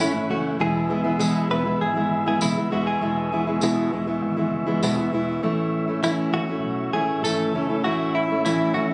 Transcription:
Already playing: tonewheel organ A3 E5 C#6 F#6
0.00 fingered electric bass G#1, steel-string acoustic guitar A2 E3 A3 C#4 E4, clean electric guitar E4, tambourine
0.14 steel-string acoustic guitar A3 C#4 E4
0.29 fingered electric bass F#1, steel-string acoustic guitar E3 A3 C#4 E4, clean electric guitar F#4
0.59 fingered electric bass E1, steel-string acoustic guitar E2 B2 E3 G#3 B3 E4, tonewheel organ G#4 B5 E6, clean electric guitar G#4
0.89 steel-string acoustic guitar E3 G#3 B3 E4
1.04 steel-string acoustic guitar E3 G#3 B3 E4
1.19 steel-string acoustic guitar E2 B2 E3 G#3 B3 E4, tambourine
1.49 fingered electric bass E1, steel-string acoustic guitar E3 G#3 B3 E4, clean electric guitar B4
1.65 steel-string acoustic guitar E3 G#3 B3 E4
1.81 fingered electric bass G#1, clean electric guitar G#4
1.95 steel-string acoustic guitar E3 G#3 B3 E4
2.11 fingered electric bass G#1
2.26 steel-string acoustic guitar E3 G#3 B3 E4, clean electric guitar G#4
2.41 fingered electric bass F#1, steel-string acoustic guitar E2 B2 E3 G#3 B3 E4, clean electric guitar E4, tambourine
2.56 steel-string acoustic guitar E3 G#3 B3 E4
2.71 fingered electric bass E1, steel-string acoustic guitar E3 G#3 B3 E4, clean electric guitar F#4
2.87 clean electric guitar G#4
3.00 fingered electric bass E1, steel-string acoustic guitar E2 B2 E3 G#3 B3 E4, tonewheel organ C#6
3.32 steel-string acoustic guitar E3 G#3 B3 E4
3.47 steel-string acoustic guitar E3 G#3 B3 E4
3.61 steel-string acoustic guitar E2 B2 E3 G#3 B3 E4, tambourine
3.92 fingered electric bass E1, steel-string acoustic guitar E3 G#3 B3 E4
4.07 steel-string acoustic guitar E3 G#3 B3 E4
4.22 fingered electric bass G#1
4.37 steel-string acoustic guitar E3 G#3 B3 E4
4.52 fingered electric bass F#1
4.67 steel-string acoustic guitar E3 G#3 B3 E4
4.82 fingered electric bass E1, steel-string acoustic guitar E2 B2 E3 G#3 B3 E4, tambourine
4.97 steel-string acoustic guitar E3 G#3 B3 E4
5.12 fingered electric bass E1, steel-string acoustic guitar E3 G#3 B3 E4
5.42 fingered electric bass A1, steel-string acoustic guitar A2 E3 A3 C#4 E4, tonewheel organ A3 E5 C#6 E6
5.88 steel-string acoustic guitar A3 C#4 E4
6.03 steel-string acoustic guitar A2 E3 A3 C#4 E4, clean electric guitar E4, tambourine
6.33 fingered electric bass A1, steel-string acoustic guitar E3 A3 C#4 E4, clean electric guitar F#4
6.48 steel-string acoustic guitar A3 C#4 E4
6.63 fingered electric bass B1
6.93 fingered electric bass A1, steel-string acoustic guitar E3 A3 C#4 E4, clean electric guitar G#4
7.23 fingered electric bass G#1, steel-string acoustic guitar E3 A3 C#4 E4, clean electric guitar A4, tambourine
7.54 fingered electric bass F#1, steel-string acoustic guitar E3 A3 C#4 E4
7.69 steel-string acoustic guitar A3 C#4 E4
7.84 fingered electric bass A1, steel-string acoustic guitar A2 E3 A3 C#4 E4, clean electric guitar F#4
8.15 clean electric guitar E4
8.30 steel-string acoustic guitar A3 C#4 E4
8.45 steel-string acoustic guitar A2 E3 A3 C#4 E4, clean electric guitar E4, tambourine
8.74 fingered electric bass A1, steel-string acoustic guitar E3 A3 C#4 E4, clean electric guitar F#4
8.90 steel-string acoustic guitar E4

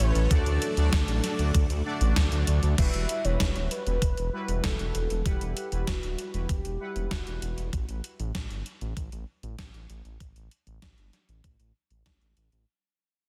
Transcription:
Already playing: string machine E3 A3 C#4 A4 C#5, analog polysynth A3 C#4 E4 C#5
0.00 detuned saw bass A1, soft synth lead B4, closed hi-hat
0.15 detuned saw bass A1, closed hi-hat
0.31 detuned saw bass D2, string machine F#3 D4 D5, analog polysynth A3 D4 F#4 D5, soft synth lead A4, kick, closed hi-hat
0.46 detuned saw bass D2, closed hi-hat
0.62 closed hi-hat
0.77 detuned saw bass D2, analog polysynth A3 D4 F#4 D5, closed hi-hat
0.93 detuned saw bass D2, kick, snare, closed hi-hat
1.08 detuned saw bass A1, closed hi-hat
1.24 snare, closed hi-hat
1.39 detuned saw bass D2, analog polysynth A3 D4 F#4 D5, closed hi-hat
1.54 detuned saw bass D2, kick, closed hi-hat
1.70 detuned saw bass D2, closed hi-hat
1.85 analog polysynth A3 D4 F#4 D5
2.01 detuned saw bass A1, closed hi-hat
2.16 detuned saw bass D2, kick, snare, closed hi-hat
2.32 detuned saw bass D2, analog polysynth A3 D4 F#4 D5, closed hi-hat
2.47 detuned saw bass D2, closed hi-hat
2.63 detuned saw bass D2, closed hi-hat
2.78 detuned saw bass E1, analog polysynth G3 E4 F#4 B4, soft synth lead E5, kick, closed hi-hat, crash
2.94 detuned saw bass E1, closed hi-hat
3.09 closed hi-hat
3.25 detuned saw bass E1, analog polysynth G3 E4 F#4 B4, soft synth lead C#5, closed hi-hat
3.40 detuned saw bass E1, kick, snare, closed hi-hat
3.56 detuned saw bass D1, closed hi-hat
3.71 soft synth lead B4, closed hi-hat
3.86 detuned saw bass E1, analog polysynth G3 E4 F#4 B4, closed hi-hat
4.02 detuned saw bass E1, kick, closed hi-hat
4.17 detuned saw bass E1, closed hi-hat
4.33 analog polysynth G3 E4 F#4 B4
4.48 detuned saw bass E1, closed hi-hat
4.64 detuned saw bass E1, soft synth lead A4, kick, snare, closed hi-hat
4.79 detuned saw bass E1, analog polysynth G3 E4 F#4 B4, closed hi-hat
4.95 detuned saw bass E1, closed hi-hat
5.10 detuned saw bass E1, closed hi-hat
5.25 detuned saw bass E1, analog polysynth G3 E4 B4 F#5, soft synth lead G4, kick, closed hi-hat
5.41 detuned saw bass E1, closed hi-hat
5.57 closed hi-hat
5.72 detuned saw bass E1, analog polysynth G3 E4 F#4 B4, closed hi-hat
5.87 detuned saw bass E1, soft synth lead F#4, kick, snare, closed hi-hat
6.03 detuned saw bass D1, closed hi-hat
6.19 closed hi-hat
6.34 detuned saw bass E1, analog polysynth G3 E4 F#4 B4, closed hi-hat
6.49 detuned saw bass E1, soft synth lead G4, kick, closed hi-hat
6.65 detuned saw bass E1, closed hi-hat
6.80 analog polysynth G3 E4 B4 F#5
6.96 detuned saw bass E1, closed hi-hat
7.11 detuned saw bass E1, soft synth lead F#4, kick, snare, closed hi-hat
7.26 detuned saw bass E1, analog polysynth G3 E4 F#4 B4, closed hi-hat
7.42 detuned saw bass E1, closed hi-hat
7.58 detuned saw bass E1, closed hi-hat
7.73 detuned saw bass A1, kick, closed hi-hat
7.89 detuned saw bass A1, closed hi-hat
8.04 closed hi-hat
8.19 detuned saw bass A1, closed hi-hat
8.35 detuned saw bass A1, kick, snare, closed hi-hat
8.50 detuned saw bass G1, closed hi-hat
8.66 closed hi-hat
8.81 detuned saw bass A1, closed hi-hat
8.97 detuned saw bass A1, kick, closed hi-hat
9.12 detuned saw bass A1, closed hi-hat
9.43 detuned saw bass A1, closed hi-hat
9.59 detuned saw bass A1, kick, snare, closed hi-hat
9.74 detuned saw bass A1, closed hi-hat
9.89 detuned saw bass A1, closed hi-hat
10.05 detuned saw bass A1, closed hi-hat
10.20 detuned saw bass A1, kick, closed hi-hat
10.36 detuned saw bass A1, closed hi-hat
10.51 closed hi-hat
10.67 detuned saw bass A1, closed hi-hat
10.82 detuned saw bass A1, kick, snare, closed hi-hat
10.98 detuned saw bass G1, closed hi-hat
11.13 snare, closed hi-hat
11.29 detuned saw bass A1, closed hi-hat
11.44 detuned saw bass A1, kick, closed hi-hat
11.59 detuned saw bass A1, closed hi-hat
11.90 detuned saw bass A1, closed hi-hat
12.06 detuned saw bass A1, kick, snare, closed hi-hat
12.21 detuned saw bass A1, closed hi-hat
12.37 detuned saw bass A1, closed hi-hat
12.52 detuned saw bass A1, closed hi-hat

